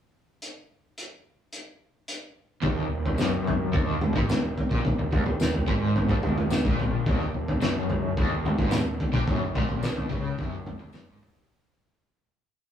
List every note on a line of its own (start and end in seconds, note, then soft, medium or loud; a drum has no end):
0.42 closed hi-hat medium
0.98 closed hi-hat medium
1.53 closed hi-hat medium
2.08 closed hi-hat medium
2.62 2.89 D#1 medium
2.62 2.89 D#2 loud
2.62 11.45 A#3 medium
2.62 11.45 D#4 medium
2.62 11.45 G4 medium
2.62 7.02 A#4 medium
2.62 kick loud
2.62 floor tom medium
2.91 3.16 D#1 medium
2.91 3.12 D#2 medium
3.06 floor tom medium
3.18 3.69 F#1 medium
3.18 3.72 F#2 loud
3.18 snare medium
3.18 tambourine medium
3.47 floor tom medium
3.73 4.12 D#1 medium
3.73 4.13 D#2 loud
3.73 kick loud
3.73 floor tom medium
4.01 mid tom medium
4.16 4.28 G#1 medium
4.16 4.28 G#2 medium
4.16 kick loud
4.16 mid tom medium
4.29 4.54 D#1 medium
4.29 4.51 D#2 medium
4.29 snare medium
4.29 mid tom medium
4.29 tambourine medium
4.58 floor tom medium
4.71 4.84 A#1 medium
4.71 4.83 A#2 medium
4.71 kick medium
4.85 4.97 D#1 medium
4.85 4.98 D#2 medium
4.85 kick medium
4.85 floor tom medium
4.98 5.11 D#1 medium
4.98 5.10 D#2 medium
5.12 5.25 D#1 medium
5.12 5.25 D#2 medium
5.12 kick loud
5.12 floor tom medium
5.12 mid tom medium
5.26 5.39 D#1 medium
5.26 5.39 D#2 medium
5.26 floor tom medium
5.40 5.66 D#1 medium
5.40 5.62 D#2 medium
5.40 snare medium
5.40 tambourine medium
5.54 floor tom medium
5.68 6.06 G#1 medium
5.68 6.08 G#2 medium
5.68 kick loud
5.68 floor tom medium
5.96 floor tom medium
6.09 6.61 D#1 loud
6.09 6.64 D#2 medium
6.09 kick loud
6.23 floor tom medium
6.23 mid tom medium
6.38 mid tom medium
6.50 snare medium
6.50 mid tom medium
6.50 tambourine medium
6.65 7.04 A#1 medium
6.65 7.05 A#2 medium
6.65 kick loud
6.65 floor tom medium
6.79 floor tom medium
7.05 7.32 D#1 medium
7.05 7.33 D#2 loud
7.05 11.44 A4 medium
7.05 kick loud
7.05 floor tom medium
7.34 7.60 D#1 medium
7.34 7.56 D#2 medium
7.48 floor tom medium
7.61 8.13 F#1 medium
7.61 8.16 F#2 loud
7.61 snare medium
7.61 tambourine medium
7.90 floor tom medium
8.17 8.56 D#1 medium
8.17 8.58 D#2 loud
8.17 kick loud
8.17 floor tom medium
8.46 mid tom medium
8.58 8.71 G#1 medium
8.58 8.72 G#2 medium
8.58 kick loud
8.58 mid tom medium
8.71 8.98 D#1 medium
8.71 8.95 D#2 medium
8.71 snare medium
8.71 mid tom medium
8.71 tambourine medium
9.00 floor tom medium
9.13 9.27 A#1 medium
9.13 9.26 A#2 loud
9.13 kick medium
9.27 9.54 F#1 medium
9.27 9.54 F#2 loud
9.27 kick medium
9.27 floor tom medium
9.55 9.81 A#1 medium
9.55 9.82 A#2 loud
9.55 kick medium
9.55 floor tom medium
9.55 mid tom medium
9.69 floor tom medium
9.83 10.09 D#1 medium
9.83 10.10 D#2 loud
9.83 snare medium
9.83 tambourine medium
9.96 floor tom medium
10.09 10.37 C#2 medium
10.09 10.37 C#3 loud
10.09 kick loud
10.09 floor tom medium
10.38 10.77 F#1 medium
10.38 10.78 F#2 loud
10.38 kick loud
10.38 floor tom medium
10.67 floor tom medium
10.67 mid tom medium
10.79 10.93 D#1 medium
10.79 10.92 D#2 medium
10.79 mid tom medium
10.93 11.07 F#1 medium
10.93 11.06 F#2 loud
10.93 snare medium
10.93 tambourine medium
11.06 11.20 G#1 medium
11.06 11.20 G#2 medium
11.21 11.47 D#1 medium
11.21 11.48 D#2 loud
11.21 mid tom medium
11.36 floor tom medium